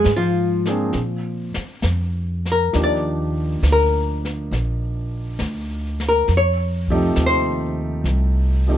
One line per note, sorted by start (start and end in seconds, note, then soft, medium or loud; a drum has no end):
0.04 0.92 G#2 medium
0.04 snare soft
0.04 hi-hat pedal medium
0.16 1.58 F3 soft
0.16 1.58 F4 medium
0.66 0.92 F3 soft
0.66 0.92 A#3 soft
0.66 0.93 C4 soft
0.66 0.93 D4 soft
0.66 0.92 G#4 medium
0.66 snare soft
0.93 1.52 A#2 medium
0.93 brush sweep soft
0.93 snare soft
1.54 muted upright bass stroke soft
1.54 snare soft
1.82 2.71 F2 medium
1.82 snare soft
1.82 hi-hat pedal medium
2.46 snare soft
2.52 2.77 A#4 medium
2.73 3.61 D#2 medium
2.73 5.24 F3 soft
2.73 5.24 A#3 soft
2.73 5.24 D4 soft
2.73 5.25 D#4 soft
2.73 5.25 G4 medium
2.73 brush sweep soft
2.73 snare soft
2.84 3.64 D5 medium
3.63 4.49 D2 medium
3.63 snare medium
3.63 hi-hat pedal soft
3.72 4.28 A#4 medium
4.25 snare soft
4.51 5.38 A#1 medium
4.51 brush sweep soft
4.51 snare soft
5.39 6.26 D2 medium
5.39 snare soft
5.39 hi-hat pedal soft
6.00 snare soft
6.09 6.33 A#4 medium
6.28 7.14 F2 medium
6.28 brush sweep soft
6.28 snare soft
6.37 7.17 C#5 medium
6.88 7.15 C3 medium
6.88 7.15 F3 medium
6.88 7.15 A3 medium
6.88 7.15 D#4 medium
6.88 7.15 G4 medium
6.88 kick medium
7.16 8.03 D#2 medium
7.16 snare medium
7.16 hi-hat pedal medium
7.26 7.81 C5 medium
8.04 8.78 C2 medium
8.04 brush sweep soft
8.04 snare soft
8.68 8.78 F3 soft
8.68 8.78 A3 soft
8.68 8.78 C4 soft
8.68 8.78 D#4 soft
8.68 8.78 G4 medium